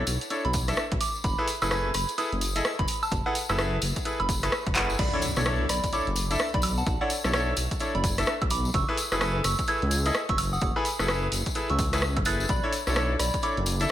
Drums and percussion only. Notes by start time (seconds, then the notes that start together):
0.07 open hi-hat, tambourine
0.21 closed hi-hat, tambourine
0.30 closed hi-hat, tambourine
0.45 closed hi-hat
0.53 kick, open hi-hat, tambourine
0.68 cross-stick, closed hi-hat, tambourine
0.77 cross-stick, tambourine
0.92 kick, closed hi-hat
1.01 open hi-hat, tambourine
1.15 tambourine
1.24 kick, closed hi-hat, tambourine
1.48 open hi-hat, tambourine
1.62 cross-stick, tambourine, high woodblock
1.71 cross-stick, tambourine
1.94 cross-stick, open hi-hat, tambourine
2.09 closed hi-hat, tambourine
2.18 closed hi-hat, tambourine
2.32 closed hi-hat
2.41 open hi-hat, tambourine
2.56 closed hi-hat, tambourine
2.65 cross-stick, tambourine
2.79 kick, closed hi-hat
2.88 open hi-hat, tambourine
3.03 tambourine, high woodblock
3.11 kick, closed hi-hat, tambourine
3.35 open hi-hat, tambourine
3.49 cross-stick, tambourine, high woodblock
3.59 cross-stick, tambourine
3.82 open hi-hat, tambourine
3.96 kick, closed hi-hat, tambourine
4.05 closed hi-hat, tambourine
4.20 closed hi-hat, high woodblock
4.29 kick, open hi-hat, tambourine
4.43 cross-stick, closed hi-hat, tambourine
4.52 cross-stick, tambourine
4.67 kick, closed hi-hat
4.75 clap, open hi-hat, tambourine
4.90 tambourine
4.99 kick, closed hi-hat, tambourine, crash
5.22 open hi-hat, tambourine
5.36 cross-stick, tambourine
5.46 cross-stick, tambourine
5.69 cross-stick, open hi-hat, tambourine
5.84 kick, closed hi-hat, tambourine
5.93 closed hi-hat, tambourine
6.07 closed hi-hat
6.16 open hi-hat, tambourine
6.31 closed hi-hat, tambourine
6.39 cross-stick, tambourine
6.54 kick, closed hi-hat
6.62 open hi-hat, tambourine, high woodblock
6.78 tambourine
6.87 kick, closed hi-hat, tambourine
7.10 open hi-hat, tambourine
7.24 cross-stick, tambourine
7.33 cross-stick, tambourine
7.57 open hi-hat, tambourine
7.71 kick, closed hi-hat, tambourine
7.80 closed hi-hat, tambourine
7.95 closed hi-hat
8.04 kick, open hi-hat, tambourine
8.18 cross-stick, closed hi-hat, tambourine
8.26 cross-stick, tambourine
8.42 kick, closed hi-hat, high woodblock
8.50 open hi-hat, tambourine
8.65 tambourine
8.74 kick, closed hi-hat, tambourine
8.97 open hi-hat, tambourine
9.12 cross-stick, tambourine
9.21 cross-stick, tambourine
9.44 cross-stick, open hi-hat, tambourine
9.59 kick, closed hi-hat, tambourine
9.68 closed hi-hat, tambourine
9.82 closed hi-hat
9.91 open hi-hat, tambourine
10.06 closed hi-hat, tambourine
10.15 cross-stick, tambourine
10.29 kick, closed hi-hat
10.38 open hi-hat, tambourine, high woodblock
10.53 tambourine
10.61 kick, closed hi-hat, tambourine
10.85 open hi-hat, tambourine
10.99 cross-stick, tambourine
11.08 cross-stick, tambourine
11.32 open hi-hat, tambourine
11.46 kick, closed hi-hat, tambourine
11.55 closed hi-hat, tambourine
11.70 closed hi-hat
11.79 kick, open hi-hat, tambourine
11.93 cross-stick, closed hi-hat, tambourine
12.02 cross-stick, tambourine
12.17 kick, closed hi-hat, high woodblock
12.25 open hi-hat, tambourine
12.40 tambourine
12.49 kick, closed hi-hat, tambourine
12.73 open hi-hat, tambourine
12.87 cross-stick, tambourine
12.96 cross-stick, tambourine
13.19 cross-stick, open hi-hat, tambourine
13.34 kick, closed hi-hat, tambourine
13.42 closed hi-hat, tambourine
13.57 closed hi-hat
13.66 open hi-hat, tambourine
13.80 closed hi-hat, tambourine